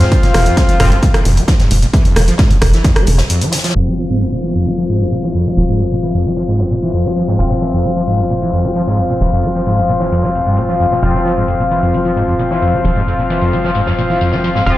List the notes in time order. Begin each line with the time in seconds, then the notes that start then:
Already playing: F3 C4 F4
0.01 G#2, snare, closed hi-hat
0.12 F2, kick, closed hi-hat
0.23 A#2, snare, closed hi-hat
0.34 F1 E3, cross-stick, snare, closed hi-hat, open hi-hat
0.46 F2, closed hi-hat
0.57 G#3, kick, snare, closed hi-hat
0.69 F3, closed hi-hat
0.80 F1 G#2 F3 C4 F4, kick, cross-stick, closed hi-hat, open hi-hat
0.91 F2, closed hi-hat
1.03 A#2, kick, closed hi-hat
1.14 E3, cross-stick, closed hi-hat
1.25 F1 F2, closed hi-hat, open hi-hat
1.37 G#3, closed hi-hat
1.48 F3, kick, snare, closed hi-hat
1.60 G#2, snare, closed hi-hat
1.71 F1 F2, closed hi-hat, open hi-hat
1.82 A#2, closed hi-hat
1.94 E3, kick, closed hi-hat
2.05 F2, closed hi-hat
2.16 F1 G#3, cross-stick, closed hi-hat, open hi-hat
2.28 F3, closed hi-hat
2.38 G#2, kick, snare, closed hi-hat
2.51 F2, closed hi-hat
2.62 F1 A#2, kick, cross-stick, closed hi-hat, open hi-hat
2.73 E3, snare, closed hi-hat
2.84 F2, kick, snare, closed hi-hat
2.96 G#3, cross-stick, closed hi-hat
3.06 F1 C3, closed hi-hat, open hi-hat
3.18 F1, snare, closed hi-hat
3.30 F2, closed hi-hat
3.41 F3, closed hi-hat
3.52 C3, snare, closed hi-hat, open hi-hat
3.58 snare, closed hi-hat
3.64 F3, snare, closed hi-hat, open hi-hat
3.70 snare, closed hi-hat
3.75 F1 F2 F3 C4 F4, downlifter
3.87 G#3, snare
3.97 F3, snare, closed hi-hat
4.10 G#2
4.21 F2, closed hi-hat
4.32 A#2
4.44 E3, closed hi-hat
4.55 F2, closed hi-hat
4.66 G#3, closed hi-hat
4.78 F3, closed hi-hat
4.89 G#2, closed hi-hat
5.01 F2
5.12 A#2, closed hi-hat
5.23 E3, snare
5.34 F2, closed hi-hat
5.46 G#3
5.57 F1 F3, closed hi-hat
5.69 G#2
5.80 F2, closed hi-hat
5.91 A#2
6.03 E3, closed hi-hat
6.14 F2, closed hi-hat
6.25 G#3, closed hi-hat
6.37 F3, snare
6.48 G#2, closed hi-hat
6.60 F2, snare
6.70 A#2, closed hi-hat
6.82 E3
6.93 F2, closed hi-hat
7.05 G#3, snare
7.16 F3, closed hi-hat
7.28 G#2, snare
7.39 F1 F2 F3 C4 F4, closed hi-hat
7.50 A#2, snare
7.61 E3, snare, closed hi-hat
7.73 F2
7.84 G#3, closed hi-hat
7.96 F3, closed hi-hat
8.07 G#2, closed hi-hat
8.19 F2, closed hi-hat
8.29 A#2, closed hi-hat
8.41 E3, closed hi-hat
8.53 F2, closed hi-hat
8.64 G#3
8.75 F3, closed hi-hat
8.87 G#2, snare
8.97 F2, closed hi-hat
9.10 A#2
9.21 F1 E3, closed hi-hat
9.32 F2
9.43 G#3, closed hi-hat
9.55 F3
9.66 G#2, closed hi-hat
9.78 F2, closed hi-hat
9.89 A#2, closed hi-hat
10.00 E3, snare
10.12 F2, closed hi-hat
10.23 G#3, snare
10.34 F1, closed hi-hat
10.46 G2
10.57 A#2, closed hi-hat
10.69 F3, snare
10.80 F2, closed hi-hat
10.91 A#2, snare
11.03 F1 F2 F3 C4 F4, closed hi-hat
11.14 G#3, snare
11.25 F3, snare, closed hi-hat
11.37 G#2
11.48 F2, closed hi-hat
11.60 A#2, closed hi-hat
11.71 E3, closed hi-hat
11.82 F2, closed hi-hat
11.93 G#3, closed hi-hat
12.05 F3, closed hi-hat
12.16 G#2, closed hi-hat
12.28 F2
12.39 A#2, closed hi-hat
12.51 E3, snare
12.62 F2, closed hi-hat
12.73 G#3
12.84 F1 F3, closed hi-hat
12.96 G#2
13.07 F2, closed hi-hat
13.19 A#2
13.30 E3, closed hi-hat
13.41 F2, closed hi-hat
13.53 G#3, closed hi-hat
13.64 F3, snare
13.75 G#2, closed hi-hat
13.86 F2, snare
13.98 A#2, closed hi-hat
14.10 E3
14.21 F2, closed hi-hat
14.32 G#3, snare
14.44 F3, closed hi-hat
14.55 G#2, snare
14.66 F1 F2 F3 C4 F4, closed hi-hat